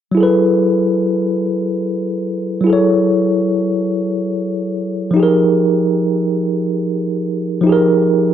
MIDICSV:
0, 0, Header, 1, 2, 480
1, 0, Start_track
1, 0, Tempo, 833333
1, 93, Time_signature, 6, 3, 24, 8
1, 4803, End_track
2, 0, Start_track
2, 0, Title_t, "Tine electric piano"
2, 0, Program_c, 0, 4
2, 66, Note_on_c, 0, 54, 54
2, 85, Note_on_c, 0, 64, 48
2, 100, Note_on_c, 0, 68, 53
2, 118, Note_on_c, 0, 69, 48
2, 132, Note_on_c, 0, 71, 58
2, 200, Control_c, 0, 64, 127
2, 1495, Note_off_c, 0, 54, 0
2, 1502, Note_on_c, 0, 54, 56
2, 1506, Note_off_c, 0, 64, 0
2, 1514, Note_off_c, 0, 68, 0
2, 1521, Note_on_c, 0, 64, 52
2, 1523, Note_off_c, 0, 69, 0
2, 1530, Note_off_c, 0, 71, 0
2, 1536, Note_on_c, 0, 68, 48
2, 1554, Note_on_c, 0, 69, 48
2, 1572, Note_on_c, 0, 73, 60
2, 2935, Note_off_c, 0, 54, 0
2, 2942, Note_on_c, 0, 53, 57
2, 2944, Note_off_c, 0, 64, 0
2, 2952, Note_off_c, 0, 68, 0
2, 2960, Note_on_c, 0, 63, 54
2, 2961, Note_off_c, 0, 69, 0
2, 2970, Note_off_c, 0, 73, 0
2, 2975, Note_on_c, 0, 67, 55
2, 2981, Control_c, 0, 64, 0
2, 2993, Note_on_c, 0, 68, 54
2, 3011, Note_on_c, 0, 70, 62
2, 3093, Control_c, 0, 64, 127
2, 4375, Note_off_c, 0, 53, 0
2, 4384, Note_off_c, 0, 63, 0
2, 4384, Note_on_c, 0, 53, 58
2, 4391, Note_off_c, 0, 67, 0
2, 4398, Note_on_c, 0, 63, 55
2, 4400, Note_off_c, 0, 68, 0
2, 4409, Note_off_c, 0, 70, 0
2, 4417, Note_on_c, 0, 67, 58
2, 4432, Note_on_c, 0, 68, 53
2, 4449, Note_on_c, 0, 70, 67
2, 4803, Note_off_c, 0, 53, 0
2, 4803, Note_off_c, 0, 63, 0
2, 4803, Note_off_c, 0, 67, 0
2, 4803, Note_off_c, 0, 68, 0
2, 4803, Note_off_c, 0, 70, 0
2, 4803, End_track
0, 0, End_of_file